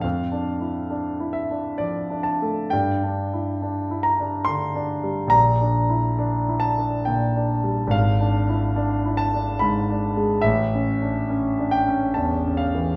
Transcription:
\new Staff \with { instrumentName = "Grand piano" } { \time 3/4 \key g \dorian \tempo 4 = 70 << { f''4. e''8 d''8 a''8 | g''4. bes''8 c'''4 | bes''4. a''8 g''8 r8 | eis''4. a''8 b''4 |
e''4. g''8 a''8 f''8 | } \\ { \tuplet 3/2 { f,8 d'8 e'8 d'8 e'8 d'8 f8 d'8 a8 } | \tuplet 3/2 { g,8 d'8 e'8 d'8 e'8 d'8 d8 d'8 g8 } | \tuplet 3/2 { bes,,8 d'8 e'8 d'8 e'8 d'8 bes,8 d'8 g8 } | \tuplet 3/2 { gis,,8 d'8 e'8 d'8 e'8 d'8 gis,8 d'8 gis8 } |
\tuplet 3/2 { a,,8 cis'8 d'8 cis'8 d'8 cis'8 e,8 cis'8 e8 } | } >> }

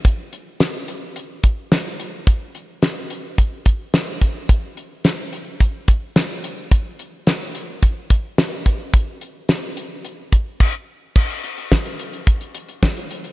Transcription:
\new DrumStaff \with { instrumentName = "Drums" } \drummode { \time 4/4 \tempo 4 = 108 <hh bd>8 hh8 <hh sn>8 hh8 hh8 <hh bd>8 <hh sn>8 hh8 | <hh bd>8 hh8 <hh sn>8 hh8 <hh bd>8 <hh bd>8 <hh sn>8 <hh bd>8 | <hh bd>8 hh8 <hh sn>8 hh8 <hh bd>8 <hh bd>8 <hh sn>8 hh8 | <hh bd>8 hh8 <hh sn>8 hh8 <hh bd>8 <hh bd>8 <hh sn>8 <hh bd>8 |
<hh bd>8 hh8 <hh sn>8 hh8 hh8 <hh bd>8 <cymc bd>4 | <cymc bd>16 hh16 hh16 hh16 <bd sn>16 hh16 hh16 hh16 <hh bd>16 hh16 hh16 hh16 <bd sn>16 hh16 hh16 hh16 | }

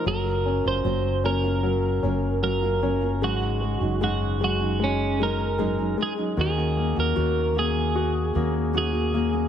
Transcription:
<<
  \new Staff \with { instrumentName = "Clean electric guitar" } { \time 4/4 \key ges \lydian \tempo 4 = 76 bes'8. c''8. bes'4. bes'4 | ges'4 ges'8 ges'8 des'8 bes'4 aes'8 | aes'8. bes'8. aes'4. aes'4 | }
  \new Staff \with { instrumentName = "Nylon-string guitar" } { \time 4/4 \key ges \lydian <ges bes des' f'>8. <bes des' f'>16 <ges bes des' f'>8 <ges bes des' f'>16 <bes des' f'>8. <ges bes des' f'>8 <ges bes des' f'>16 <bes des' f'>16 <ges bes des' f'>16 <bes des' f'>16 | <aes, des ges des' ees' aes'>8. <ges des' ees' aes'>16 <aes, des ges des' ees' aes'>8 <ges des' ees' aes'>16 <ges des' ees' aes'>8. <ges des' ees' aes'>8 <aes, des ges des' ees' aes'>16 <ges des' ees' aes'>16 <ges des' ees' aes'>16 <ges des' ees' aes'>16 | <ees bes des' ges'>16 <bes des' ges'>8 <bes des' ges'>16 <ees bes des' ges'>8 <ees bes des' ges'>4 <ees bes des' ges'>8 <ees bes des' ges'>16 <bes des' ges'>16 <ees bes des' ges'>16 <bes des' ges'>16 | }
  \new Staff \with { instrumentName = "Grand piano" } { \clef bass \time 4/4 \key ges \lydian ges8 des'8 ges8 des'8 ges8 des'8 ges8 des'8 | aes8 aes8 aes8 aes8 aes8 aes8 aes8 aes8 | ees8 bes8 ges'8 bes8 ges'8 bes8 ges'8 bes8 | }
  \new Staff \with { instrumentName = "Fretless electric bass" } { \clef bass \time 4/4 \key ges \lydian ges,,8. ges,,16 ges,,4. ges,,4. | aes,,8. ges,,2~ ges,,8. r8 | ees,8. ees,16 ees,4. ees,4. | }
>>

